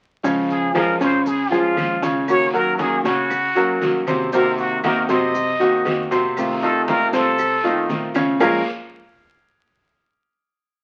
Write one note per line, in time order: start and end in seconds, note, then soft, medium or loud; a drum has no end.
0.23 0.97 A#1 medium
0.23 0.66 C#3 medium
0.23 0.73 F3 medium
0.23 0.73 G#3 medium
0.23 0.66 C#4 medium
0.23 0.75 C#4 medium
0.23 0.75 F4 medium
0.23 0.66 C#5 medium
0.23 high conga soft
0.23 long guiro medium
0.23 maracas medium
0.50 0.77 G#4 medium
0.50 high conga soft
0.50 maracas soft
0.74 0.99 F3 medium
0.74 0.96 F3 medium
0.74 0.99 G#3 medium
0.74 0.99 C#4 medium
0.74 0.96 F4 medium
0.74 0.98 F4 medium
0.74 0.96 G#4 medium
0.74 1.01 A#4 medium
0.74 high conga medium
0.74 short guiro medium
0.74 claves medium
0.74 maracas soft
0.99 1.73 F2 medium
0.99 1.43 C#3 medium
0.99 1.25 G#3 soft
0.99 1.25 C#4 soft
0.99 1.43 C#4 medium
0.99 1.24 F4 soft
0.99 1.28 C5 medium
0.99 1.43 C#5 medium
0.99 high conga soft
0.99 short guiro medium
0.99 maracas medium
1.26 1.54 G#4 medium
1.26 muted nylon-string guitar stroke medium
1.26 high conga soft
1.26 long guiro medium
1.26 maracas medium
1.50 1.94 F3 medium
1.50 1.76 G#3 medium
1.50 1.76 C#4 medium
1.50 1.76 F4 medium
1.50 1.94 F4 medium
1.50 2.04 F4 medium
1.50 1.94 G#4 medium
1.50 high conga soft
1.50 maracas soft
1.76 2.98 D#2 medium
1.76 2.01 F3 soft
1.76 2.02 G#3 soft
1.76 2.02 C#4 medium
1.76 2.01 F4 medium
1.76 high conga medium
1.76 short guiro medium
1.76 claves medium
1.76 maracas soft
2.02 2.45 C#3 medium
2.02 2.28 G#3 soft
2.02 2.45 C#4 medium
2.02 2.28 C#4 soft
2.02 2.27 F4 soft
2.02 2.45 C#5 medium
2.02 high conga medium
2.02 short guiro medium
2.02 maracas medium
2.28 2.77 D#3 medium
2.28 2.78 A#3 medium
2.28 2.78 C#4 medium
2.28 2.79 F#4 medium
2.28 2.52 C#5 loud
2.28 high conga soft
2.28 long guiro medium
2.28 claves medium
2.28 maracas medium
2.53 2.96 F#3 medium
2.53 2.96 F#4 medium
2.53 2.81 A#4 medium
2.53 2.96 A#4 medium
2.53 high conga soft
2.53 maracas soft
2.78 3.03 D#3 medium
2.78 3.04 A#3 medium
2.78 3.04 C#4 medium
2.78 3.02 F#4 medium
2.78 3.03 G#4 medium
2.78 high conga medium
2.78 short guiro medium
2.78 maracas soft
3.04 3.77 A#1 medium
3.04 3.47 C#3 medium
3.04 3.29 A#3 soft
3.04 3.29 C#4 soft
3.04 3.47 C#4 medium
3.04 3.29 F#4 soft
3.04 4.02 F#4 medium
3.04 3.47 C#5 medium
3.04 high conga soft
3.04 short guiro medium
3.04 maracas medium
3.30 muted nylon-string guitar stroke medium
3.30 high conga soft
3.30 long guiro medium
3.30 claves medium
3.30 maracas medium
3.55 3.98 F#3 medium
3.55 3.80 A#3 medium
3.55 3.81 C#4 medium
3.55 3.80 F#4 medium
3.55 3.98 F#4 medium
3.55 3.98 A#4 medium
3.55 high conga soft
3.55 maracas soft
3.81 5.02 C2 medium
3.81 4.06 D#3 medium
3.81 4.06 A#3 medium
3.81 4.06 C#4 medium
3.81 4.05 F#4 medium
3.81 high conga medium
3.81 short guiro medium
3.81 maracas soft
4.07 4.28 C3 medium
4.07 4.33 A#3 soft
4.07 4.28 C4 medium
4.07 4.32 C#4 soft
4.07 4.31 F#4 soft
4.07 4.29 C5 medium
4.07 high conga medium
4.07 short guiro medium
4.07 claves medium
4.07 maracas medium
4.33 4.75 C3 medium
4.33 4.82 C3 medium
4.33 4.83 D#3 medium
4.33 4.83 A#3 medium
4.33 4.75 C4 medium
4.33 4.84 C4 medium
4.33 4.84 F#4 medium
4.33 4.57 A#4 medium
4.33 4.75 C5 medium
4.33 high conga soft
4.33 long guiro medium
4.33 maracas medium
4.58 4.86 F#4 medium
4.58 high conga soft
4.58 maracas soft
4.83 5.08 C3 medium
4.83 5.05 D#3 medium
4.83 5.08 D#3 medium
4.83 5.09 A#3 medium
4.83 5.09 C4 medium
4.83 5.05 D#4 medium
4.83 5.05 F#4 medium
4.83 5.08 F#4 medium
4.83 5.09 A#4 loud
4.83 high conga medium
4.83 short guiro medium
4.83 claves medium
4.83 maracas soft
5.09 5.81 F#2 medium
5.09 5.51 C3 medium
5.09 5.35 A#3 soft
5.09 5.51 C4 medium
5.09 5.34 C4 soft
5.09 5.34 F#4 soft
5.09 5.52 C5 medium
5.09 6.07 D#5 loud
5.09 high conga soft
5.09 short guiro medium
5.09 maracas medium
5.34 muted nylon-string guitar stroke medium
5.34 high conga soft
5.34 long guiro medium
5.34 maracas medium
5.60 6.02 D#3 medium
5.60 5.85 D#3 medium
5.60 5.85 A#3 medium
5.60 5.85 C4 medium
5.60 6.02 D#4 medium
5.60 5.84 F#4 medium
5.60 6.02 F#4 medium
5.60 high conga soft
5.60 maracas soft
5.85 7.06 F2 loud
5.85 6.10 D#3 soft
5.85 6.11 A#3 medium
5.85 6.11 C4 medium
5.85 6.10 F#4 soft
5.85 high conga medium
5.85 short guiro medium
5.85 claves medium
5.85 maracas soft
6.11 6.53 C3 medium
6.11 6.37 A#3 soft
6.11 6.53 C4 medium
6.11 6.36 C4 soft
6.11 6.36 F#4 medium
6.11 6.53 C5 medium
6.11 short guiro medium
6.11 maracas medium
6.36 6.87 C3 medium
6.36 6.87 D#3 medium
6.36 6.87 A3 medium
6.36 6.88 C4 medium
6.36 6.88 F4 medium
6.36 high conga soft
6.36 long guiro medium
6.36 claves medium
6.36 maracas medium
6.62 7.04 D#3 medium
6.62 7.04 D#4 medium
6.62 7.05 F4 medium
6.62 6.89 A4 medium
6.62 high conga soft
6.62 maracas soft
6.87 7.12 C3 medium
6.87 7.13 D#3 medium
6.87 7.13 A3 medium
6.87 7.13 C4 medium
6.87 7.12 F4 medium
6.87 7.14 A#4 loud
6.87 high conga medium
6.87 short guiro medium
6.87 maracas soft
7.13 7.86 C2 medium
7.13 7.55 C3 medium
7.13 7.38 A3 soft
7.13 7.55 C4 medium
7.13 7.38 C4 soft
7.13 7.38 F4 soft
7.13 7.90 A4 medium
7.13 7.56 C5 medium
7.13 high conga soft
7.13 short guiro medium
7.13 maracas medium
7.38 muted nylon-string guitar stroke medium
7.38 high conga soft
7.38 long guiro medium
7.38 claves medium
7.38 maracas medium
7.64 8.06 D#3 medium
7.64 7.88 D#3 medium
7.64 7.89 A3 medium
7.64 7.89 C4 medium
7.64 8.06 D#4 medium
7.64 7.88 F4 medium
7.64 8.07 F4 medium
7.64 high conga soft
7.64 maracas soft
7.89 8.35 A#1 loud
7.89 8.14 D#3 medium
7.89 8.14 A3 medium
7.89 8.14 C4 medium
7.89 8.13 F4 medium
7.89 high conga medium
7.89 short guiro medium
7.89 maracas soft
8.14 8.36 C#3 medium
8.14 8.40 A3 soft
8.14 8.40 C4 soft
8.14 8.37 C#4 medium
8.14 8.39 F4 soft
8.14 8.37 C#5 medium
8.14 high conga medium
8.14 short guiro medium
8.14 claves medium
8.14 maracas medium
8.39 8.64 A#1 loud
8.39 8.61 A#2 medium
8.39 8.61 F3 medium
8.39 8.61 G#3 medium
8.39 8.64 A#3 medium
8.39 8.61 C#4 medium
8.39 8.64 F4 medium
8.39 8.61 F4 medium
8.39 8.64 G#4 medium
8.39 8.64 A#4 medium
8.39 8.65 C#5 medium
8.39 8.65 F5 medium
8.39 low conga loud
8.39 long guiro medium
8.39 claves medium
8.39 maracas loud